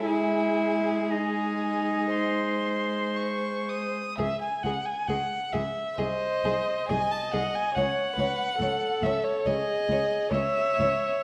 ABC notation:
X:1
M:4/4
L:1/16
Q:1/4=66
K:C#m
V:1 name="Violin"
g4 g4 ^b4 c'2 d'2 | e g f g f2 e2 d4 g a f g | f6 e c d4 c4 |]
V:2 name="Viola"
G,16 | z8 ^B4 d4 | c2 B2 A4 G4 e4 |]
V:3 name="Violin"
G8 ^B8 | G2 G2 G2 G2 G2 G2 G2 G2 | c2 c2 c2 c2 c2 c2 c2 c2 |]
V:4 name="Cello" clef=bass
E4 D8 z4 | C,,2 C,,2 C,,2 C,,2 ^B,,,2 B,,,2 B,,,2 B,,,2 | C,,2 C,,2 C,,2 C,,2 C,,2 C,,2 C,,2 C,,2 |]